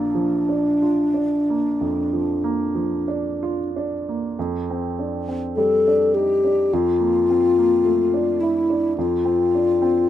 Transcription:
Already playing: A#1 F3 A#3 D4 A4 D5 F5 A5
0.15 F3
0.49 D4
0.82 F4
1.14 D4
1.50 A#3
1.81 F2
2.13 F3
2.44 A#3
2.75 F3
3.08 D4
3.43 F4
3.76 D4
4.09 A#3
4.39 F2
4.70 C4
4.99 D4
5.28 C4
5.56 G3 A4
5.88 D4
6.15 D#4 G4
6.44 D4
6.73 F2 F4
7.00 A#3
7.30 C4
7.58 A#3
7.85 A3
8.14 D4
8.41 E4
8.70 D4
8.98 F2 F4
9.25 C4
9.55 D4
9.82 C4

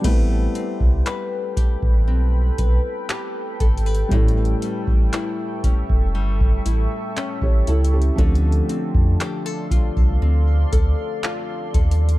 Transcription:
Already playing: C4 D4
0.01 A1 G3 A3 B3 C4 A4 B4 G5 B5, kick, closed hi-hat, crash
0.07 E4 A4
0.55 C4, closed hi-hat
0.81 C2, kick
1.06 B4, clap, closed hi-hat
1.57 A1 G4, kick, closed hi-hat
1.83 A1, kick
2.08 B1 C4
2.58 B1 B4, kick, closed hi-hat
3.09 G4, clap, closed hi-hat
3.60 G#1 A4, kick, closed hi-hat
3.78 closed hi-hat
3.86 B4
3.95 closed hi-hat
4.09 A1 A2 G3 A3 C#4 E4 E5 C#6, kick, closed hi-hat
4.14 E4 A4
4.28 closed hi-hat
4.45 closed hi-hat
4.62 G3, closed hi-hat
4.88 A1, kick
5.13 E4, clap, closed hi-hat
5.64 F1 C#4, kick, closed hi-hat
5.90 F1, kick
6.15 G1 G3
6.41 kick
6.66 A1 E4, closed hi-hat
7.17 C#4, clap, closed hi-hat
7.42 A1 G4 C#5, kick
7.67 C#2 E4 A4, closed hi-hat
7.85 closed hi-hat
7.94 C#4 G4
8.02 closed hi-hat
8.16 D2 D3 F3 A3 C4 A4 D5 F5 C6, kick, closed hi-hat
8.20 D4 A4
8.35 closed hi-hat
8.52 closed hi-hat
8.69 C4, closed hi-hat
8.95 F2, kick
9.20 G4, clap, closed hi-hat
9.46 A4
9.71 C2 F4, kick, closed hi-hat
9.97 C2, kick
10.22 D2 C4
10.73 D2 A4, kick, closed hi-hat
11.23 F4, clap, closed hi-hat
11.74 D#2 A4, kick, closed hi-hat
11.91 closed hi-hat
12.09 closed hi-hat

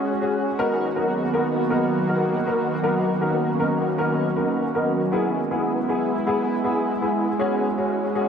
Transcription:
Already playing: G#3 C#4 F#4 G#4
0.22 C#4 F#4 G#4
0.59 D#3 F#3 A#3 B3 D#4 A#4
0.95 B3 D#4 A#4
1.34 B3 D#4 A#4
1.70 B3 D#4 A#4
2.08 B3 D#4 A#4
2.46 B3 D#4 A#4
2.83 B3 C#4 D#4 A#4
3.21 B3 D#4 A#4
3.59 B3 D#4 A#4
3.98 B3 D#4 A#4
4.36 B3 D#4 A#4
4.75 B3 D#4 A#4
5.12 G#3 B3 E4 G#4
5.51 B3 E4 G#4
5.89 B3 E4 G#4
6.27 B3 E4 G#4
6.64 B3 E4 G#4
7.01 B3 E4 G#4
7.37 C#4 F#4 G#4
7.78 C#4 F#4 G#4
8.15 C#4 F#4 G#4

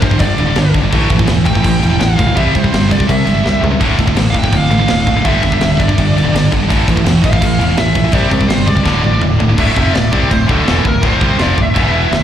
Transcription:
Already playing: G2 D3 G3
0.00 G1 G2 D3 C5, kick, crash
0.11 G2 D3, kick
0.19 G1 G2 D3 D5, kick, crash
0.38 D1 G2 D3, crash
0.47 G2 D3
0.55 G1 G2 D3, snare, crash
0.74 G1 G2 D3, kick, crash
0.82 G2 D3
0.90 A1 A2 E3 A3, kick, crash
1.09 A1 A2 E3, kick, crash
1.16 A2 E3, kick
1.25 E1 A2 E3, snare, crash
1.44 A1 A2 E3 G5, kick, crash
1.53 A2 E3, kick
1.62 A1 A2 E3, kick, crash
1.80 E1 A2 E3, crash
1.89 A2 E3
1.99 A1 A2 E3 F5, snare, crash
2.18 D2 A2 E3, kick, crash
2.26 A2 E3
2.35 C2 C3 G3 C4 E5, kick, crash
2.53 C2 C3 G3 C5, kick, crash
2.63 C3 G3, kick
2.73 G1 C3 G3, snare, crash
2.89 C2 C3 G3 D5, kick, crash
2.99 C3 G3, kick
3.09 C2 C3 G3 E5, kick, crash
3.27 G1 C3 G3, crash
3.34 C3 G3
3.44 C2 C3 G3, snare
3.61 C#2 C3 G3, floor tom
3.71 C3 G3
3.80 D1 D2 A2 D3, kick, crash
3.99 D1 D2 A2, kick, crash
4.07 D2 A2, kick
4.16 A1 D2 A2, snare, crash
4.30 F5, crash
4.34 D1 D2 A2, kick
4.39 G5
4.44 D2 A2, kick
4.52 D1 D2 A2 F5, kick, crash
4.70 A1 D2 A2, crash
4.79 D2 A2
4.87 D1 D2 A2, snare, crash
5.06 D1 D2 A2, kick, crash
5.16 D2 A2
5.25 G1 G2 D3 G3 E5, kick, crash
5.43 G1 G2 D3, kick, crash
5.52 G2 D3, kick
5.61 D1 G2 D3, snare, crash
5.79 G1 G2 D3 D5, kick, crash
5.88 G2 D3, kick
5.98 G1 G2 D3, kick, crash
6.16 D1 G2 D3, crash
6.24 G2 D3
6.34 G1 G2 D3, snare, crash
6.52 G1 G2 D3, kick, crash
6.63 G2 D3
6.69 A1 A2 E3 A3, kick, crash
6.87 A1 A2 E3, kick, crash
6.96 A2 E3, kick
7.04 E1 A2 E3, snare, crash
7.24 A1 A2 E3 F5, kick, crash
7.33 A2 E3, kick
7.42 A1 A2 E3, kick, crash
7.58 E1 A2 E3, crash
7.68 A2 E3
7.76 A1 A2 E3 E5, snare, crash
7.95 A#1 A2 E3, kick, crash
8.04 A2 E3
8.11 C2 C3 G3 C4 D5, kick, crash
8.29 C2 C3 G3, kick, crash
8.38 C3 G3, kick
8.48 G1 C3 G3 C5, snare, crash
8.67 C#2 C3 G3 D5, kick, crash
8.75 C3 G3, kick
8.83 D1 D2 A2 D3, kick, snare
9.03 A1 D2 A2, high tom
9.11 D2 A2
9.20 D1 D2 A2, mid tom
9.39 D1 D2 A2, floor tom
9.48 D2 A2
9.57 D1 D2 A2 D3 E5, kick, crash, china
9.76 F1 F2 C3 F3, kick
9.94 D1 D2 A2 D5, snare, china
10.12 C2 C3 G3 C4, kick
10.31 D1 D2 A2 C5, kick, china
10.47 D1 D2 A2 D3 A4, kick
10.65 E1 E2 B2 E3, snare, china
10.84 D1 D2 A2 A#4, kick
11.03 D1 D2 A2 D3 C5, kick, china
11.21 C2 C3 G3 C4, kick
11.37 F1 F2 C3 F3, snare, china
11.42 D5
11.57 D1 D2 A2, kick
11.62 E5
11.75 E1 E2 B2 E3, kick, china
12.12 D1 D2 A2, snare, china

